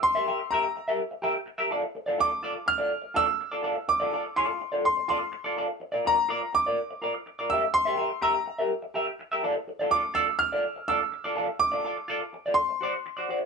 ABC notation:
X:1
M:4/4
L:1/16
Q:1/4=124
K:F
V:1 name="Grand piano"
c'4 b4 z8 | z2 d'4 f'4 e'6 | d'4 c'4 c'2 c'4 z2 | z2 b4 d'8 e'2 |
c'4 b4 z8 | z2 d'2 e'2 f'4 e'4 z2 | d'8 c'6 z2 |]
V:2 name="Clean electric guitar"
z [GBe] [GBe] z [GBe] z2 [GBe] z2 [GBe] z2 [GBe] [FAd] z | z [FAd] [FAd] z [FAd] z2 [FAd] z2 [FAd] z2 [FAd] [FAd] z | z [FAd] [FAd] z [FAd]2 z [FAd] z2 [FAd] z2 [FAd] [FAd] z | z [FBd] [FBd] z [FBd] z2 [FBd] z2 [FBd] z2 [FBd] [GBe] z |
z [GBe] [GBe] z [GBe] z2 [GBe] z2 [GBe] z2 [GBe] [FAd] z | z [FAd] [FAd] z [FAd] z2 [FAd] z2 [FAd] z2 [FAd] [FAd] z | z [FAd] [FAd] z [FAd] z2 [FAd] z2 [^Fcd] z2 [Fcd] [Fcd] z |]